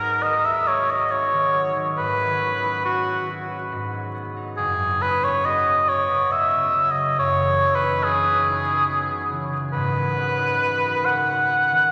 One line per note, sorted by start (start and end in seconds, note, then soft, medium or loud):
0.00 1.95 G#1 medium
0.00 1.96 G#2 medium
0.00 1.53 F#3 medium
0.00 1.08 G#3 soft
0.00 1.10 B3 soft
0.00 0.88 D#4 medium
0.00 3.90 G#4 medium
0.00 0.24 A#4 loud
0.22 0.67 F#4 medium
0.22 0.47 D#5 loud
0.45 4.35 B4 medium
0.45 0.69 E5 loud
0.67 2.84 F#4 medium
0.67 0.92 C#5 medium
0.89 2.01 D#4 medium
0.89 1.12 D#5 medium
1.11 4.13 B3 medium
1.11 1.81 C#5 medium
1.32 1.75 D#3 medium
1.54 2.18 F#3 medium
1.76 2.01 D#3 medium
1.96 3.74 G#1 medium
1.96 3.71 G#2 medium
1.96 2.84 B4 loud
2.19 3.91 F#3 medium
2.41 3.50 C#4 medium
2.63 3.07 E4 medium
2.85 3.28 F#4 medium
3.08 3.75 E4 medium
3.29 5.44 F#4 medium
3.51 3.75 C#4 medium
3.72 4.62 G#2 medium
3.93 4.79 F#3 medium
4.14 6.31 B3 medium
4.36 4.62 D#4 medium
4.57 7.17 F#1 medium
4.57 7.18 F#2 medium
4.57 5.03 G#4 medium
4.80 6.75 F#3 medium
5.02 6.10 C#4 medium
5.02 5.26 B4 loud
5.24 8.02 E4 medium
5.24 5.46 C#5 loud
5.45 5.88 F#4 medium
5.45 5.90 D#5 loud
5.67 9.57 B4 medium
5.88 7.22 F#4 medium
5.88 6.33 C#5 loud
6.11 7.60 C#4 medium
6.31 8.88 B3 medium
6.31 6.92 E5 medium
6.54 6.96 C#3 medium
6.76 7.22 F#3 medium
6.91 7.18 D#5 medium
6.97 7.22 C#3 medium
7.18 9.76 F#1 medium
7.18 9.76 F#2 medium
7.18 7.77 C#5 loud
7.40 9.31 E3 medium
7.61 8.66 C#4 medium
7.75 8.05 B4 loud
7.82 8.24 D#4 medium
8.03 8.45 E4 medium
8.03 9.31 G#4 medium
8.25 10.37 D#4 medium
8.46 9.77 E4 medium
8.68 10.16 C#4 medium
8.89 11.92 B3 medium
9.10 9.52 C#3 medium
9.32 9.77 E3 medium
9.53 9.77 C#3 medium
9.73 11.92 G#1 medium
9.73 11.92 G#2 medium
9.73 11.07 B4 loud
9.96 11.90 F#3 medium
10.17 11.27 C#4 medium
10.39 11.92 D#4 medium
10.61 11.05 F#4 medium
10.84 11.92 A#4 medium
11.05 11.92 F#4 medium
11.05 11.92 F#5 loud
11.28 11.92 C#4 medium
11.49 11.92 A#3 medium
11.71 11.92 D#3 medium